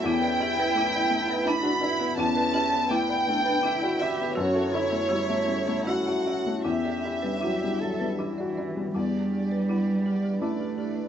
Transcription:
<<
  \new Staff \with { instrumentName = "Violin section" } { \time 3/4 \key e \dorian \tempo 4 = 82 g''2 b''4 | a''4 g''4. e''8 | cis''2 fis''4 | e''2~ e''8 r8 |
d''8 d''8 d''8 d''8 d''8 d''8 | }
  \new Staff \with { instrumentName = "Marimba" } { \time 3/4 \key e \dorian e'16 d''16 g'16 b'16 e'16 d''16 r16 b'16 e'16 d''16 d''16 r16 | e'16 d''16 g'16 b'16 e'16 d''16 r16 b'16 e'16 d''16 d''16 r16 | fis'16 e''16 a'16 cis''16 fis'16 e''16 r16 cis''16 fis'16 e''16 e''16 r16 | e'16 d''16 g'16 b'16 e'16 d''16 r16 b'16 e'16 d''16 d''16 r16 |
e'16 d''16 g'16 b'16 e'16 r16 g'16 g'16 e'16 g'16 g'16 d''16 | }
  \new Staff \with { instrumentName = "Ambient pad" } { \time 3/4 \key e \dorian << { <d b'>2.~ | <d b'>2. | <cis' a'>2. | <d' g'>2. |
<d' b'>2. | } \\ { e'2.~ | e'2. | e'2.~ | e'2. |
e'2. | } >> }
  \new Staff \with { instrumentName = "Cello" } { \time 3/4 \key e \dorian e'2 d'8 e'8 | cis'4 b8 d'8 e'8 g'8 | fis'8 e'8 e'4 fis'4 | g'4 g'8 a'8 e4 |
g2 a4 | }
  \new Staff \with { instrumentName = "Felt piano" } { \time 3/4 \key e \dorian e,16 b'16 e'16 b16 a16 b16 a16 b16 e'16 fis'16 e'16 b16 | e,16 b'16 e'16 b16 a16 b16 a16 b16 e'16 fis'16 e'16 b16 | fis,16 a'16 e'16 a16 g16 a16 g16 a16 e'16 fis'16 e'16 a16 | e,16 g'16 e'16 g16 fis16 g16 fis16 g16 e'16 fis'16 e'16 g16 |
e,4 b4 <d' e'>4 | }
>>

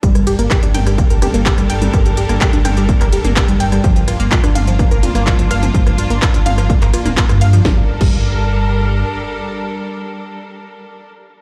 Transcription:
<<
  \new Staff \with { instrumentName = "String section" } { \time 4/4 \key g \minor \tempo 4 = 126 <g d' a' bes'>1~ | <g d' a' bes'>1 | <bes d' f'>1~ | <bes d' f'>1 |
<g d' a' bes'>1~ | <g d' a' bes'>1 | }
  \new Staff \with { instrumentName = "Synth pluck" } { \time 4/4 \key g \minor g16 g16 g'16 bes16 g'16 d'16 g''16 g16 bes16 bes'16 g'16 bes16 g'16 g16 g''16 g16 | g16 g16 g'16 bes16 g'16 d'16 g''16 g16 bes16 bes'16 g'16 bes16 g'16 g16 g''16 g16 | f16 f16 f'16 bes16 f'16 d'16 f''16 f16 bes16 bes'16 f'16 bes16 f'16 f16 f''16 f16 | f16 f16 f'16 bes16 f'16 d'16 f''16 f16 bes16 bes'16 f'16 bes16 f'16 f16 f''16 f16 |
g16 r8 g16 r2. | r1 | }
  \new Staff \with { instrumentName = "Analog synth bass" } { \clef bass \time 4/4 \key g \minor g,,8. g,,16 r8 g,,8. f,,8 g,,8 g,,8. | g,,8. g,,16 r8 g,,8. f,,8 g,,8 g,,8. | g,,8. g,,16 r8 g,,8. f,,8 g,,8 g,,8. | g,,8. g,,16 r8 g,,8. g,,16 r16 d,,8 g,8. |
g,,16 r8 g,,2~ g,,16 r4 | r1 | }
  \new DrumStaff \with { instrumentName = "Drums" } \drummode { \time 4/4 <hh bd>16 <hh ss>16 <hh cymr>16 hh16 <hc hh bd ss>16 hh16 <hh cymr toml>16 <hh ss>16 <hh bd>16 hh16 <hh cymr ss toml>16 hh16 <hc hh bd>16 <hh ss>16 <hh cymr>16 <hh toml>16 | <hh bd ss>16 hh16 <hh cymr>16 <hh ss>16 <hc hh bd>16 hh16 <hh cymr ss toml>16 hh16 <hh bd>16 <hc hh ss>16 <hh cymr>16 <hh toml>16 <hc hh bd ss>16 hh16 <hh cymr>16 <hh ss>16 | <hh bd>16 hh16 <hh cymr ss>16 hh16 <hc hh bd>16 <hh ss>16 <hh cymr toml>16 hh16 <hh bd ss>16 hh16 <hh cymr toml>16 <hh ss>16 <hc hh bd>16 hh16 <hh cymr ss>16 <hh toml>16 | <hh bd>16 <hh ss>16 <hh cymr>16 hh16 <hc hh bd ss>16 hh16 <hh cymr toml>16 <hh ss>16 <hh bd>16 <hc hh>16 <hh cymr ss>16 <hh toml>16 <hc hh bd>16 <hh ss>16 <hh cymr>16 hh16 |
<bd sn>8. <cymc bd>16 r4 r4 r4 | r4 r4 r4 r4 | }
>>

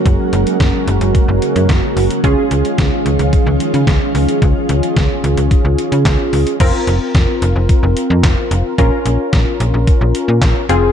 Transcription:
<<
  \new Staff \with { instrumentName = "Analog polysynth" } { \time 4/4 \key bes \minor \tempo 4 = 110 <des' ges' bes'>1 | <des' f' aes'>1~ | <des' f' aes'>1 | <c' f' bes'>1 |
<des' f' bes'>2.~ <des' f' bes'>8 <c' f' aes'>8 | }
  \new Staff \with { instrumentName = "String machine" } { \clef bass \time 4/4 \key bes \minor << { <des ges bes ges'>1 | <ees f des' f'>1~ | <ees f des' f'>1 | r1 |
r1 | } \\ { aes1~ | aes1~ | aes1 | r1 |
r1 | } >> }
  \new Staff \with { instrumentName = "FM bass" } { \clef bass \time 4/4 \key bes \minor ges,,16 r16 ges,,16 r16 ges,,16 r16 ges,,16 ges,,16 r16 ges,,16 r16 ges,16 ges,,16 r16 ges,,16 r16 | des,16 r16 des,16 r16 des,16 r16 des,16 des,16 r16 des,16 r16 des16 des,16 r16 des,16 r16 | des,16 r16 des,16 r16 des,16 r16 des,16 des,16 r16 des,16 r16 des16 des,16 r16 des,16 r16 | f,,16 r16 f,,16 r16 f,,16 r16 f,,16 f,,16 r16 f,,16 r16 f,16 f,,16 r16 f,,16 r16 |
bes,,16 r16 bes,,16 r16 bes,,16 r16 bes,,16 bes,,16 r16 bes,,16 r16 bes,16 bes,,16 r16 f,,8 | }
  \new DrumStaff \with { instrumentName = "Drums" } \drummode { \time 4/4 <hh bd>8 hh16 hh16 <hh bd sn>8 hh16 hh16 <hh bd>8 hh16 hh16 <hh bd sn>8 hho16 hh16 | <hh bd>8 hh16 hh16 <hh bd sn>8 hh16 hh16 <hh bd>8 hh16 hh16 <hh bd sn>8 hho16 hh16 | <hh bd>8 hh16 hh16 <hh bd sn>8 hh16 hh16 <hh bd>8 hh16 hh16 <hc hh bd sn>8 hho16 hh16 | <cymc hh bd>8 hh8 <hh bd sn>8 hh8 <hh bd>8 hh8 <hc hh bd sn>8 hh8 |
<hh bd>8 hh8 <hh bd sn>8 hh8 <hh bd>8 hh8 <hc hh bd sn>8 hh8 | }
>>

